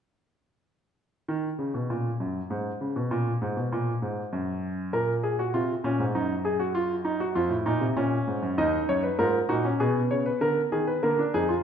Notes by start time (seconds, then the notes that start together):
1.28 D#3
1.59 C#3
1.74 B2
1.90 A#2
2.20 F#2
2.50 G#2
2.81 C#3
2.96 B2
3.11 A#2
3.42 G#2
3.57 B2
3.72 A#2
4.02 G#2
4.33 F#2
4.93 A#2 A#4
5.23 G#4
5.39 F#4
5.54 C3 F4
5.84 A#2 C#4
5.99 G#2
6.15 F#2 D#4
6.45 G#4
6.60 F#4
6.75 F4
7.05 D#4
7.20 F#4
7.35 F2 F4
7.49 A2
7.66 A#2 D#4
7.81 C3
7.96 A#2 C#4
8.27 G#2
8.43 F#2
8.58 D#2 D#4 D#5
8.89 F#2 C#5
9.03 B4
9.19 G#2 F4 A#4
9.49 A#2 D#4 F#4
9.65 C#4
9.80 B2 B3 G#4
10.11 C#3 C#5
10.26 B4
10.41 D3 A#4
10.72 D#3 G#4
10.87 B4
11.03 D3 A#3 A#4
11.19 D4
11.34 F2 D#4 G#4
11.49 F4